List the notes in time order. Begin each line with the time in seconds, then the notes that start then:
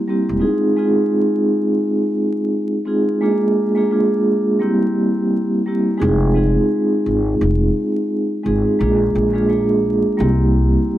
0.08 G3 A#3 C4 E4 G4
0.29 E1
0.39 G#3 C4 D#4 F4 G#4
0.76 G#3 C4 D#4 F4 G#4
2.85 G#3 C4 D#4 F4 G#4
3.21 G#3 A#3 D4 F4 G#4
3.75 G#3 A#3 D4 F4 G#4
3.91 G#3 A#3 D4 F4 G#4
4.59 G3 A#3 C4 E4 G4
5.66 G3 A#3 C4 E4 G4
5.97 G#3 C4 D#4 F4 G#4
6.01 F1
6.34 G#3 C4 D#4 F4 G#4
7.06 G#1
7.41 F1
8.43 G#1 G#3 C4 D#4 F4 G#4
8.79 A#1 G#3 A#3 D4 F4 G#4
9.15 A#1
9.33 G#3 A#3 D4 F4 G#4
9.48 G#3 A#3 D4 F4 G#4
10.17 C2 G3 A#3 C4 E4 G4